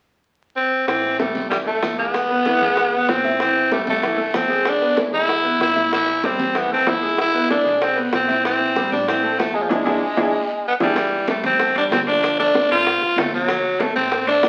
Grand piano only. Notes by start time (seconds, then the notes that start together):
0.88 E3 E4
1.20 G3 G4
1.51 E3 E4
1.66 A3 A4
1.98 G#3 G#4
2.30 B3 B4
2.46 E3 E4
2.61 G#3 G#4
2.92 B3 B4
3.25 E4 E5
3.40 E3 E4
3.71 G3 G4
4.03 E3 E4
4.18 A3 A4
4.49 G#3 G#4
4.81 B3 B4
4.96 E3 E4
5.12 G#3 G#4
5.44 B3 B4
5.76 E4 E5
5.93 E3 E4
6.23 G3 G4
6.55 E3 E4
6.72 A3 A4
7.02 G#3 G#4
7.34 B3 B4
7.48 E3 E4
7.64 G#3 G#4
7.96 B3 B4
8.28 E4 E5
8.44 E3 E4
8.75 G3 G4
9.07 E3 E4
9.23 A3 A4
9.55 G#3 G#4
9.69 D4 E4 G#4
9.85 D4 E4 G#4
10.17 D4 E4 G#4
10.81 D4 E4 G#4
10.97 E3 E4
11.28 G3 G4
11.60 A3 A4
11.75 G3 G4
12.08 F3 F4
12.39 A3 A4
12.71 C4 C5
13.02 F4 F5
13.17 C4 C5
13.49 F#3 F#4
13.80 A3 A4
14.12 C4 C5
14.26 A3 A4